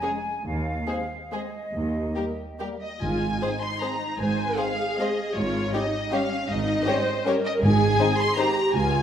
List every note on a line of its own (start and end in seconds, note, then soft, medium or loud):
0.00 0.10 G#3 soft
0.00 0.18 G#3 soft
0.00 0.17 C#4 soft
0.00 0.11 G#4 soft
0.00 0.11 C#5 soft
0.00 0.45 G#5 medium
0.44 0.81 D#2 medium
0.44 1.31 F5 medium
0.86 1.02 G#3 soft
0.86 0.96 G#3 soft
0.86 1.02 C4 soft
0.86 0.96 G#4 soft
0.86 0.96 C5 soft
1.31 1.47 G#3 soft
1.31 1.40 G#3 soft
1.31 1.46 C4 soft
1.31 1.41 G#4 soft
1.31 1.40 C5 soft
1.31 2.57 D#5 medium
1.73 2.08 D#2 medium
1.73 2.08 D#2 soft
2.15 2.32 G3 soft
2.15 2.23 A#3 soft
2.15 2.32 A#3 soft
2.15 2.24 G4 soft
2.15 2.23 A#4 soft
2.60 2.76 G3 soft
2.60 2.68 A#3 soft
2.60 2.76 A#3 soft
2.60 2.68 G4 soft
2.60 2.68 A#4 soft
2.81 3.00 D#5 medium
2.81 2.88 D#5 soft
3.00 3.34 G#1 medium
3.00 3.34 G#2 medium
3.00 3.57 G#2 medium
3.00 3.37 F4 medium
3.00 3.60 G#5 medium
3.00 3.61 G#5 medium
3.41 3.55 G#3 soft
3.41 3.55 C4 soft
3.41 4.20 D#4 soft
3.41 3.50 G#4 soft
3.41 3.50 C5 soft
3.61 3.81 C6 medium
3.61 3.82 C6 medium
3.81 3.95 G#3 soft
3.81 3.95 C4 soft
3.81 3.89 G#4 soft
3.81 3.89 C5 soft
3.81 4.19 A#5 soft
3.81 4.19 A#5 medium
4.18 4.51 G#1 medium
4.18 4.51 G#2 medium
4.18 4.58 C5 medium
4.18 4.57 G#5 medium
4.57 4.72 G#3 soft
4.57 4.73 C4 soft
4.57 4.65 G#4 soft
4.57 5.36 G#4 medium
4.57 4.65 C5 soft
4.57 4.97 F5 medium
4.57 4.98 F5 medium
4.97 5.11 G#3 soft
4.97 5.11 C4 soft
4.97 5.08 G#4 soft
4.97 5.08 C5 soft
4.97 5.36 D#5 medium
4.97 5.36 D#5 soft
5.36 5.68 G#1 medium
5.36 5.67 G#2 medium
5.36 5.74 F4 medium
5.36 5.73 C#5 medium
5.36 5.74 C#5 medium
5.71 5.86 G3 soft
5.71 5.86 C#4 medium
5.71 6.13 D#4 medium
5.71 5.81 G4 soft
5.71 5.82 C#5 soft
5.71 6.12 D#5 medium
5.71 6.13 D#5 medium
6.12 6.25 G3 medium
6.12 6.50 C#4 medium
6.12 6.26 C#4 medium
6.12 6.20 G4 medium
6.12 6.20 C#5 medium
6.12 6.50 F5 medium
6.49 6.81 G#1 medium
6.49 6.81 G#2 medium
6.49 6.87 D#4 medium
6.49 7.26 D#5 medium
6.49 7.25 D#5 medium
6.86 7.00 G3 medium
6.86 7.00 C#4 medium
6.86 6.95 G4 medium
6.86 7.26 C5 medium
6.86 6.95 C#5 medium
7.25 7.39 G3 medium
7.25 7.38 C#4 medium
7.25 7.34 G4 medium
7.25 7.62 A#4 medium
7.25 7.34 C#5 medium
7.45 7.52 D#5 medium
7.45 7.62 D#5 medium
7.62 7.93 G#1 medium
7.62 7.93 G#2 medium
7.62 8.15 G#2 medium
7.62 8.38 G#4 medium
7.62 8.18 G#5 medium
7.62 8.20 G#5 medium
7.99 8.13 D#3 medium
7.99 8.13 C4 medium
7.99 8.08 D#4 medium
7.99 8.07 C5 medium
8.18 8.38 C6 medium
8.36 8.50 D#3 medium
8.36 8.50 C4 medium
8.36 8.46 D#4 medium
8.36 8.74 G4 medium
8.36 8.46 C5 medium
8.36 8.74 A#5 medium
8.74 9.03 C#2 medium
8.74 9.03 F4 medium
8.74 9.03 G#5 medium